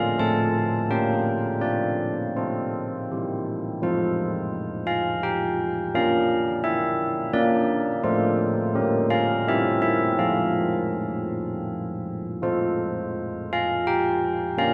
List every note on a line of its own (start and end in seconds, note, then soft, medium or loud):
0.00 0.18 A3 medium
0.00 0.18 F4 medium
0.00 0.17 C5 medium
0.00 0.18 F5 loud
0.18 0.89 A3 medium
0.18 0.89 F4 medium
0.18 0.88 C5 soft
0.18 0.88 A5 medium
0.90 1.61 A#3 medium
0.90 1.61 F4 soft
0.90 1.61 A#4 soft
0.90 1.60 G5 medium
1.61 2.34 C4 soft
1.61 2.34 F4 soft
1.61 2.34 A4 soft
1.61 2.33 D5 medium
2.37 3.08 C4 soft
2.37 3.08 F4 soft
2.37 3.09 A4 soft
2.37 3.43 C5 medium
3.12 3.82 C4 soft
3.12 3.81 E4 soft
3.12 3.81 G4 soft
3.82 5.90 F3 medium
3.82 5.90 F4 soft
3.82 5.91 A4 soft
3.82 4.85 C5 medium
4.87 5.22 F5 loud
5.23 5.91 G5 medium
5.94 7.30 A#3 medium
5.94 7.30 D4 soft
5.94 7.30 A#4 soft
5.94 6.62 F5 loud
6.64 7.31 E5 loud
7.33 8.02 A#3 medium
7.33 8.02 D4 medium
7.33 8.02 A#4 medium
7.33 8.01 D5 loud
8.03 8.73 A3 medium
8.03 8.72 F4 medium
8.03 9.06 C5 medium
8.74 9.44 A#3 medium
8.74 9.44 G4 medium
8.74 9.45 A#4 medium
9.10 9.45 F5 loud
9.48 10.19 C4 medium
9.48 10.18 G4 medium
9.48 10.19 A#4 medium
9.48 9.81 E5 loud
9.82 10.18 E5 loud
10.18 12.39 F3 medium
10.18 12.38 F4 soft
10.18 12.38 A4 soft
10.18 11.64 F5 medium
12.42 14.55 F3 medium
12.42 14.54 F4 soft
12.42 14.54 A4 soft
12.42 13.47 C5 medium
13.53 13.86 F5 loud
13.87 14.56 G5 loud
14.58 14.74 A#3 medium
14.58 14.74 D4 soft
14.58 14.74 A#4 medium
14.58 14.74 F5 loud